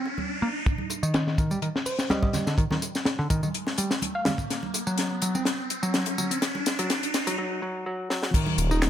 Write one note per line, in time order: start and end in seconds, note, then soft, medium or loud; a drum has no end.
0.00 riser medium
0.06 high bongo soft
0.18 high conga medium
0.42 0.47 A#3 medium
0.66 kick loud
0.66 closed hi-hat medium
0.66 tambourine soft
0.66 riser medium
0.78 high conga medium
0.90 closed hi-hat medium
0.90 tambourine medium
0.90 high bongo soft
1.03 1.37 D#3 medium
1.03 tambourine soft
1.14 snare loud
1.14 closed hi-hat medium
1.14 tambourine soft
1.27 snare soft
1.38 1.50 D#3 medium
1.38 kick loud
1.38 closed hi-hat medium
1.38 tambourine medium
1.38 high bongo soft
1.50 1.58 G3 medium
1.50 tambourine soft
1.50 high conga medium
1.62 1.67 D#3 medium
1.62 closed hi-hat medium
1.62 tambourine soft
1.76 snare medium
1.85 2.00 C5 loud
1.85 open hi-hat medium
1.85 tambourine medium
1.99 snare medium
1.99 tambourine soft
2.10 2.46 G3 medium
2.10 2.18 D#5 medium
2.10 snare loud
2.10 closed hi-hat medium
2.10 tambourine soft
2.10 high conga medium
2.23 2.30 D#5 medium
2.23 kick medium
2.23 high bongo medium
2.33 snare soft
2.33 closed hi-hat medium
2.33 tambourine medium
2.33 low conga medium
2.47 2.57 D3 medium
2.47 snare soft
2.47 tambourine soft
2.58 2.63 D#3 medium
2.58 kick loud
2.58 closed hi-hat medium
2.58 tambourine soft
2.71 2.75 D#3 medium
2.71 snare soft
2.71 high conga medium
2.82 closed hi-hat medium
2.82 tambourine medium
2.82 high bongo soft
2.95 snare soft
2.95 tambourine soft
3.05 snare loud
3.05 closed hi-hat medium
3.05 tambourine soft
3.19 3.26 D3 loud
3.30 3.42 D#3 medium
3.30 kick medium
3.30 closed hi-hat medium
3.30 tambourine medium
3.43 3.47 D#3 medium
3.43 tambourine soft
3.43 high conga medium
3.54 closed hi-hat medium
3.54 tambourine soft
3.67 snare soft
3.67 high bongo soft
3.78 3.90 G3 medium
3.78 closed hi-hat medium
3.78 tambourine medium
3.91 snare medium
3.91 tambourine soft
4.02 closed hi-hat medium
4.02 tambourine soft
4.02 high conga medium
4.15 4.22 F5 medium
4.25 4.31 G3 medium
4.25 4.35 F5 medium
4.25 snare loud
4.25 closed hi-hat medium
4.25 tambourine medium
4.25 low conga medium
4.38 kick loud
4.38 tambourine soft
4.50 snare soft
4.50 closed hi-hat medium
4.50 tambourine soft
4.63 high conga medium
4.74 closed hi-hat medium
4.74 tambourine medium
4.74 high bongo medium
4.87 5.21 F#3 medium
4.87 tambourine soft
4.98 snare soft
4.98 closed hi-hat medium
4.98 tambourine soft
5.22 5.34 F#3 medium
5.22 closed hi-hat medium
5.22 tambourine medium
5.22 high bongo soft
5.35 5.42 C4 loud
5.35 tambourine soft
5.35 high conga medium
5.45 snare medium
5.45 closed hi-hat medium
5.45 tambourine soft
5.70 closed hi-hat medium
5.70 tambourine medium
5.83 6.17 F#3 medium
5.83 tambourine soft
5.94 snare medium
5.94 closed hi-hat medium
5.94 tambourine soft
5.94 high conga medium
6.06 closed hi-hat medium
6.06 high bongo medium
6.18 6.30 F#3 medium
6.18 tambourine medium
6.18 low conga medium
6.31 6.38 C4 loud
6.31 closed hi-hat medium
6.31 tambourine soft
6.42 snare medium
6.42 closed hi-hat medium
6.42 tambourine soft
6.55 high conga loud
6.66 snare medium
6.66 closed hi-hat medium
6.66 tambourine medium
6.66 high bongo soft
6.79 6.88 F#3 medium
6.79 closed hi-hat medium
6.79 tambourine soft
6.90 snare medium
6.90 closed hi-hat medium
6.90 tambourine soft
7.03 closed hi-hat medium
7.14 snare medium
7.14 closed hi-hat medium
7.14 tambourine medium
7.27 7.36 F#3 loud
7.27 closed hi-hat medium
7.27 tambourine soft
7.27 high conga medium
7.38 7.60 F#3 loud
7.62 7.84 F#3 loud
7.86 8.08 F#3 loud
8.10 8.32 F#3 loud
8.10 snare medium
8.23 snare medium
8.34 8.70 D#3 medium
8.34 kick loud
8.34 closed hi-hat medium
8.34 crash medium
8.34 tambourine soft
8.47 high conga medium
8.58 8.90 D#1 loud
8.58 closed hi-hat medium
8.58 tambourine medium
8.58 high bongo medium
8.71 8.90 D#4 loud
8.71 tambourine soft
8.82 snare loud
8.82 clap loud
8.82 closed hi-hat medium
8.82 tambourine soft